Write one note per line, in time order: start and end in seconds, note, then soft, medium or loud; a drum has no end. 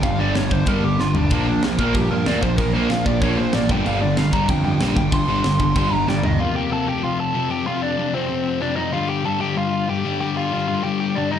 0.00 0.31 G1 loud
0.00 0.19 G3 loud
0.00 1.32 A#3 loud
0.00 0.19 F5 medium
0.00 kick loud
0.00 crash medium
0.04 0.18 G2 medium
0.04 0.18 D3 medium
0.19 0.34 G2 medium
0.19 0.35 D3 medium
0.19 0.35 G3 loud
0.19 0.36 D5 loud
0.35 0.50 G1 medium
0.35 0.49 G2 medium
0.35 0.50 D3 medium
0.35 0.51 G3 medium
0.35 0.51 C#5 medium
0.35 snare loud
0.35 crash medium
0.50 0.65 G1 loud
0.50 0.65 G2 medium
0.50 0.65 D3 medium
0.50 0.66 G3 loud
0.50 0.68 C5 medium
0.50 kick medium
0.66 0.95 G1 medium
0.66 0.82 G2 medium
0.66 0.82 D3 loud
0.66 0.83 G3 loud
0.66 0.83 A#4 medium
0.66 kick loud
0.66 crash medium
0.84 0.98 G2 medium
0.84 0.98 D3 medium
0.84 0.98 G3 medium
0.84 1.00 G4 medium
0.99 1.14 G1 medium
0.99 1.14 G2 medium
0.99 1.14 D3 medium
0.99 1.15 G3 loud
0.99 1.17 F4 medium
0.99 snare medium
1.15 1.29 G1 medium
1.15 1.30 G2 medium
1.15 1.30 D3 medium
1.15 1.31 G3 medium
1.15 1.31 D4 medium
1.15 floor tom loud
1.30 1.59 A#1 loud
1.30 1.46 A#2 loud
1.30 1.46 F3 loud
1.30 1.47 A#3 loud
1.30 1.63 D4 loud
1.30 kick loud
1.30 crash medium
1.47 1.62 A#2 medium
1.47 1.62 F3 medium
1.47 1.64 A#3 loud
1.63 1.77 A#1 medium
1.63 1.78 A#2 medium
1.63 1.78 F3 medium
1.63 1.78 A#3 medium
1.63 snare loud
1.63 crash medium
1.79 1.93 A#1 loud
1.79 1.94 A#2 medium
1.79 1.94 F3 medium
1.79 1.95 A#3 medium
1.79 1.95 A#4 loud
1.79 kick medium
1.94 2.23 G2 medium
1.94 2.10 A#2 medium
1.94 2.10 F3 loud
1.94 2.10 A#3 loud
1.94 2.11 G4 medium
1.94 kick loud
1.94 crash medium
2.11 2.26 A#2 medium
2.11 2.26 F3 medium
2.11 2.28 A#3 medium
2.11 2.27 A#4 medium
2.26 2.41 D2 loud
2.26 2.42 A#2 medium
2.26 2.43 F3 medium
2.26 2.43 A#3 loud
2.26 2.42 D5 medium
2.26 snare loud
2.26 crash medium
2.42 2.57 A#1 medium
2.42 2.58 A#2 medium
2.42 2.58 F3 medium
2.42 2.60 A#3 medium
2.42 2.57 C5 loud
2.42 kick medium
2.58 2.86 A#1 loud
2.58 2.73 A#2 medium
2.58 2.74 F3 medium
2.58 2.74 A#3 loud
2.58 2.73 A#4 medium
2.58 kick loud
2.58 crash medium
2.73 2.90 A#2 medium
2.73 2.90 F3 loud
2.73 2.90 A#3 loud
2.73 2.89 C5 loud
2.89 3.04 A#1 loud
2.89 3.05 A#2 medium
2.89 3.05 F3 medium
2.89 3.06 A#3 medium
2.89 3.06 F5 loud
2.89 snare loud
2.89 crash medium
3.06 3.20 A#1 loud
3.06 3.21 A#2 medium
3.06 3.21 F3 medium
3.06 3.23 A#3 medium
3.06 3.21 D5 loud
3.06 kick medium
3.20 3.50 A#1 medium
3.20 3.37 A#2 medium
3.20 3.38 F3 loud
3.20 3.38 A#3 loud
3.20 3.37 C#5 medium
3.20 kick loud
3.20 crash medium
3.38 3.53 A#2 medium
3.38 3.53 F3 medium
3.38 3.55 A#3 medium
3.38 3.53 C5 medium
3.53 3.70 A1 medium
3.53 3.68 A#2 medium
3.53 3.68 F3 medium
3.53 6.89 A#3 loud
3.53 3.69 D5 medium
3.53 snare loud
3.53 crash medium
3.69 3.84 G1 medium
3.69 3.84 G2 medium
3.69 3.85 D3 loud
3.69 3.85 G3 loud
3.69 3.86 G5 medium
3.69 kick loud
3.85 4.14 G1 loud
3.85 4.00 G2 loud
3.85 4.01 D3 loud
3.85 4.01 G3 loud
3.85 4.01 F5 medium
3.85 crash medium
4.01 4.16 G2 medium
4.01 4.16 D3 medium
4.01 4.16 G3 loud
4.01 4.18 D5 medium
4.17 4.32 G1 medium
4.17 4.31 G2 medium
4.17 4.32 D3 medium
4.17 4.34 G3 medium
4.17 4.33 F5 medium
4.17 snare loud
4.17 crash medium
4.33 4.47 G1 loud
4.33 4.48 G2 medium
4.33 4.48 D3 medium
4.33 4.48 G3 medium
4.33 4.49 A#5 medium
4.33 kick medium
4.48 4.77 F2 medium
4.48 4.63 G2 medium
4.48 4.63 D3 medium
4.48 4.64 G3 loud
4.48 4.63 G5 medium
4.48 kick loud
4.48 crash medium
4.64 4.79 G2 medium
4.64 4.79 D3 medium
4.64 4.79 G3 medium
4.64 4.80 G5 loud
4.80 4.95 A#1 loud
4.80 4.95 G2 medium
4.80 4.95 D3 medium
4.80 4.96 G3 loud
4.80 snare loud
4.80 crash medium
4.96 5.11 G1 loud
4.96 5.11 G2 medium
4.96 5.11 D3 medium
4.96 5.11 G3 loud
4.96 5.12 G5 loud
4.96 kick loud
5.12 5.40 G1 loud
5.12 5.27 G2 medium
5.12 5.27 D3 loud
5.12 5.28 G3 loud
5.12 5.59 C6 medium
5.12 kick loud
5.12 crash medium
5.29 5.42 G2 loud
5.29 5.43 D3 loud
5.29 5.44 G3 loud
5.44 5.59 G1 loud
5.44 5.58 G2 medium
5.44 5.58 D3 medium
5.44 5.59 G3 medium
5.44 snare loud
5.44 crash medium
5.59 5.74 G1 loud
5.59 5.74 G2 medium
5.59 5.74 D3 medium
5.59 5.74 G3 loud
5.59 5.76 C6 loud
5.59 kick medium
5.76 6.04 G1 loud
5.76 5.91 G2 loud
5.76 5.91 D3 loud
5.76 5.91 G3 loud
5.76 5.92 C6 medium
5.76 kick loud
5.76 crash medium
5.92 6.06 G2 medium
5.92 6.07 D3 medium
5.92 6.06 G3 medium
5.92 6.08 A#5 medium
6.07 6.22 G1 loud
6.07 6.22 G2 medium
6.07 6.22 D3 medium
6.07 6.23 G3 loud
6.07 6.23 D4 medium
6.07 6.24 D5 medium
6.07 6.39 G5 medium
6.07 snare medium
6.23 6.37 G1 loud
6.23 6.38 G2 medium
6.23 6.38 D3 medium
6.23 6.39 G3 loud
6.23 6.39 D#4 medium
6.23 6.39 D#5 loud
6.23 floor tom medium
6.39 6.70 F2 loud
6.39 6.70 C3 loud
6.39 6.71 F3 loud
6.39 6.54 F4 medium
6.39 6.56 F5 medium
6.55 6.70 G4 medium
6.55 6.71 G5 loud
6.70 6.87 F2 medium
6.70 6.86 C3 loud
6.70 6.86 F3 medium
6.70 6.86 A4 medium
6.70 6.87 A5 loud
6.87 7.01 F2 medium
6.87 7.02 C3 medium
6.87 7.02 F3 loud
6.87 7.02 G4 medium
6.87 7.04 G5 loud
7.03 7.33 F2 loud
7.03 7.34 C3 loud
7.03 7.34 F3 loud
7.03 7.18 F4 medium
7.03 7.20 F5 loud
7.19 7.49 A4 medium
7.19 7.49 A5 loud
7.34 7.50 F2 medium
7.34 7.50 C3 loud
7.34 7.49 F3 loud
7.50 7.65 F2 medium
7.50 7.66 C3 medium
7.50 7.66 F3 loud
7.50 7.65 G4 medium
7.50 7.67 G5 loud
7.66 7.97 F2 medium
7.66 7.97 C3 loud
7.66 7.98 F3 loud
7.66 7.81 F4 medium
7.66 7.83 F5 medium
7.82 8.12 D4 medium
7.82 8.12 D5 loud
7.98 8.14 F2 medium
7.98 8.13 C3 medium
7.98 8.13 F3 loud
8.14 8.28 F2 medium
8.14 8.29 C3 medium
8.14 8.29 F3 loud
8.14 8.58 C4 medium
8.14 8.62 C5 medium
8.29 8.60 F2 loud
8.29 8.60 C3 medium
8.29 8.61 F3 loud
8.61 8.76 F2 medium
8.61 8.76 C3 medium
8.61 8.75 F3 loud
8.61 8.76 D4 medium
8.61 8.76 D5 medium
8.76 8.92 F2 medium
8.76 8.92 C3 medium
8.76 8.92 F3 medium
8.76 8.92 D#4 medium
8.76 8.93 D#5 medium
8.92 9.24 G2 loud
8.92 9.24 D3 loud
8.92 9.25 G3 loud
8.92 9.07 F4 medium
8.92 9.09 F5 medium
9.09 9.24 G4 medium
9.09 9.26 G5 medium
9.25 9.41 G2 medium
9.25 9.40 D3 loud
9.25 9.40 G3 loud
9.25 9.40 A4 medium
9.25 9.40 A5 loud
9.40 9.57 G2 medium
9.40 9.56 D3 medium
9.40 9.57 G3 medium
9.40 9.55 G4 medium
9.40 9.56 G5 medium
9.57 9.88 G2 medium
9.57 9.88 D3 loud
9.57 9.89 G3 loud
9.57 9.87 F4 medium
9.57 9.87 F5 medium
9.88 10.05 G2 medium
9.88 10.03 D3 medium
9.88 10.04 G3 medium
9.88 10.19 G4 medium
9.88 10.19 G5 medium
10.05 10.21 G2 medium
10.05 10.20 D3 medium
10.05 10.21 G3 loud
10.20 10.52 G2 loud
10.20 10.51 D3 loud
10.20 10.53 G3 loud
10.20 10.35 G4 medium
10.20 10.36 G5 medium
10.37 10.66 F4 medium
10.37 10.66 F5 loud
10.52 10.69 G2 medium
10.52 10.67 D3 medium
10.52 10.68 G3 medium
10.68 10.83 G2 medium
10.68 10.83 D3 medium
10.68 10.84 G3 medium
10.68 10.83 F4 medium
10.68 10.83 F5 medium
10.83 11.15 G2 loud
10.83 11.15 D3 loud
10.83 11.17 G3 loud
10.83 10.99 G4 medium
10.83 10.99 G5 medium
11.00 11.15 G4 medium
11.00 11.16 G5 loud
11.15 11.33 G2 medium
11.15 11.31 D3 loud
11.15 11.31 G3 medium
11.15 11.31 D4 medium
11.15 11.31 D5 medium
11.31 11.39 G2 medium
11.31 11.39 D3 medium
11.31 11.39 G3 medium
11.31 11.39 D#4 medium
11.31 11.39 D#5 medium